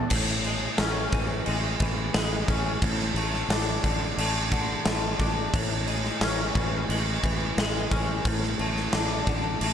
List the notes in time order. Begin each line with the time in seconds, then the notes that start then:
Already playing: A3 D4 A4 B4
0.10 A1 A2, kick, crash
0.44 G#3, crash
0.78 A1 C#4, snare, crash
1.12 A1 E3, kick, crash
1.46 A1 G#3, crash
1.80 A1 E3, kick, crash
2.14 A1 G#3, snare, crash
2.48 A1 C#4, kick, crash
2.82 A1 A2, kick, crash
3.00 snare
3.14 A1 A3, crash
3.34 snare
3.49 A1 D4, snare, crash
3.84 A1 D3, kick, crash
4.18 A1 A3, crash
4.51 D3, kick, crash
4.86 A1 A3, snare, crash
5.19 A1 D4, kick, crash
5.53 A1 A2, kick, crash
5.87 G#3, crash
6.05 snare
6.21 A1 C#4, snare, crash
6.55 A1 E3, kick, crash
6.89 A1 G#3, crash
7.23 A1 E3, kick, crash
7.58 A1 G#3, snare, crash
7.91 A1 C#4, kick, crash
8.25 A1 A2, kick, crash
8.43 snare
8.59 A1 A3, crash
8.76 snare
8.93 A1 D4, snare, crash
9.27 A1 D3, kick, crash
9.61 A1 A3, crash